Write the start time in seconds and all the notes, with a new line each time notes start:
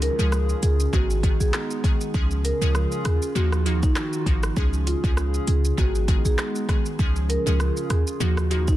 Already playing: C#3 F3 G#3 C#4 F4 G#4, downlifter
0.02 A#4, closed hi-hat, shaker
0.19 C#2 F3 G#3 C#4 G#4, shaker
0.32 cross-stick, shaker
0.49 shaker
0.63 C#2 G#4, closed hi-hat, shaker
0.80 shaker
0.93 G#1 D#3 G#3 B3 D#4 F#4 G#4, kick, shaker
1.10 shaker
1.23 D#3 G#3 B3 G#4, kick, closed hi-hat, shaker
1.40 A#1 G#4, shaker
1.54 cross-stick, clap, shaker
1.71 shaker
1.84 D#3 G#3 B3 G#4, kick, closed hi-hat, shaker
2.01 shaker
2.14 C#2 C#3 F3 G#3 C#4 F4 G#4, kick, shaker
2.31 shaker
2.45 A#4, closed hi-hat, shaker
2.61 C#2 F3 G#3 C#4 G#4, shaker
2.75 cross-stick, shaker
2.92 shaker
3.05 D#2 G#4, cross-stick, closed hi-hat, shaker
3.22 shaker
3.35 D#2 D#3 F3 A#3 D#4 F#4, shaker
3.52 cross-stick, shaker
3.66 F3 A#3 D#4 F#4, closed hi-hat, shaker
3.83 D#4, kick, shaker
3.96 cross-stick, clap, shaker
4.13 shaker
4.26 G#1 F3 A#3 D#4 F#4, kick, closed hi-hat, shaker
4.43 cross-stick, shaker
4.56 C#2 C#3 F3 G#3 C#4 G#4, kick, shaker
4.73 shaker
4.87 F4, closed hi-hat, shaker
5.04 C#2 F3 G#3 C#4 G#4, kick, shaker
5.17 cross-stick, shaker
5.34 shaker
5.47 C#2 G#4, closed hi-hat, shaker
5.65 shaker
5.77 G#1 D#3 G#3 B3 D#4 F#4 G#4, kick, shaker
5.95 shaker
6.08 D#3 G#3 B3 G#4, kick, closed hi-hat, shaker
6.25 A#1 G#4, shaker
6.38 cross-stick, clap, shaker
6.55 shaker
6.69 D#3 G#3 B3 G#4, kick, cross-stick, closed hi-hat, shaker
6.86 shaker
6.99 C#2 C#3 F3 G#3 C#4 F4 G#4, kick, shaker
7.16 shaker
7.29 A#4, closed hi-hat, shaker
7.46 C#2 F3 G#3 C#4 G#4, shaker
7.60 cross-stick, shaker
7.77 shaker
7.90 D#2 G#4, cross-stick, closed hi-hat, shaker
8.07 shaker
8.20 D#2 D#3 F3 A#3 D#4 F#4, shaker
8.37 cross-stick, shaker
8.51 F3 A#3 D#4 F#4, closed hi-hat, shaker
8.68 D#4, kick, shaker